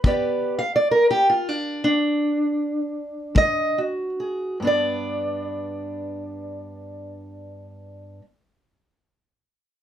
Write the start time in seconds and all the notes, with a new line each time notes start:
0.04 G2 B3 G4 B4 D5, kick
0.59 F5
0.76 D5
0.91 A#4
1.11 G4
1.30 F4
1.49 D4
1.84 D4
3.35 G#3 D#5, kick
3.78 F#4
4.20 G#4
4.60 G2 B3
4.64 D4 D5